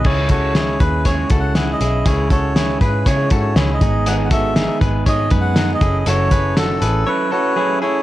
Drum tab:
CC |x-------|--------|--------|--------|
HH |-xxxxxxx|xxxxxxxx|xxxxxxxx|xxxx----|
SD |--o---o-|--o---o-|--o---o-|--o-----|
BD |oo-ooo--|oo-ooo-o|-o-ooo-o|-o------|